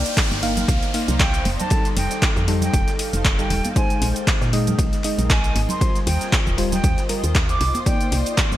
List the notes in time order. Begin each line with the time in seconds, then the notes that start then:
Already playing: A#3 D#4 A#4 C5 D5 F5 G5 A#5, downlifter
0.06 closed hi-hat, shaker
0.17 kick, snare, clap, closed hi-hat, ride, shaker
0.31 G1, snare, shaker
0.43 A#3 D#4 F5, open hi-hat, ride
0.57 closed hi-hat, low conga, shaker
0.68 C2, kick, closed hi-hat, ride, shaker
0.83 snare, closed hi-hat, shaker
0.94 A#3 D#4 F5, open hi-hat, ride
1.08 C2, closed hi-hat, low conga, shaker
1.20 G5, kick, snare, clap, closed hi-hat, ride, shaker
1.33 closed hi-hat, ride, shaker
1.45 F1, open hi-hat, ride, high conga
1.53 A4 F5
1.60 A5, closed hi-hat, low conga, shaker
1.70 G3 D#4 A4, kick, closed hi-hat, ride, shaker
1.85 snare, closed hi-hat, shaker
1.96 F1 G5, open hi-hat, ride
2.10 snare, closed hi-hat, shaker
2.22 kick, snare, clap, closed hi-hat, ride, shaker
2.36 F2, ride, shaker
2.48 G3 D#4 A4, open hi-hat, ride
2.62 G5, snare, closed hi-hat, low conga, shaker
2.73 F1, kick, closed hi-hat, ride, shaker
2.87 snare, closed hi-hat, shaker
2.99 open hi-hat, ride
3.13 F1, closed hi-hat, shaker
3.25 kick, snare, clap, closed hi-hat, ride, shaker
3.39 G3 D#4 A4 G5, snare, closed hi-hat, shaker
3.50 D#1, snare, open hi-hat, ride
3.65 closed hi-hat, high conga, shaker
3.76 G#3 C4 D#4 C5 G#5, kick, closed hi-hat, ride, shaker
3.81 A#4
3.90 closed hi-hat, shaker
4.02 A#1, open hi-hat, ride
4.09 D#5
4.16 closed hi-hat, shaker
4.27 kick, snare, clap, closed hi-hat, ride, shaker
4.31 G#5
4.41 A#2, snare, shaker
4.53 G#3 D#4 D#5, open hi-hat, ride
4.67 closed hi-hat, low conga, shaker
4.79 A#1, kick, closed hi-hat, ride, shaker
4.93 snare, closed hi-hat, shaker
5.03 G#3 D#4 D#5, open hi-hat, ride
5.18 A#1, closed hi-hat, low conga, shaker
5.29 G#5, kick, snare, clap, closed hi-hat, ride, shaker
5.44 closed hi-hat, ride, shaker
5.55 G#1, open hi-hat, ride, high conga
5.69 C6, closed hi-hat, low conga, shaker
5.81 G3 F4 C5, kick, closed hi-hat, ride, shaker
5.86 C5
5.95 snare, closed hi-hat, shaker
6.07 D#2 G5, open hi-hat, ride
6.21 snare, closed hi-hat, shaker
6.32 kick, snare, clap, closed hi-hat, ride, shaker
6.47 D#1, ride, shaker
6.53 G5
6.58 G3 F4 C5, open hi-hat, ride
6.72 G5, snare, closed hi-hat, low conga, shaker
6.83 D#2, kick, closed hi-hat, ride, shaker
6.97 snare, closed hi-hat, shaker
7.09 G3 F4 A#4, open hi-hat, ride
7.24 D#2, closed hi-hat, shaker
7.35 kick, snare, clap, closed hi-hat, ride, shaker
7.49 D6, snare, closed hi-hat, shaker
7.60 C2, snare, open hi-hat, ride
7.75 closed hi-hat, high conga, shaker
7.86 A#3 D#4 D5 G5, kick, closed hi-hat, ride, shaker
8.01 closed hi-hat, shaker
8.12 C2, open hi-hat, ride
8.18 A#5
8.26 closed hi-hat, shaker
8.34 D5, kick, snare, clap, closed hi-hat, ride, shaker
8.52 G1, snare, shaker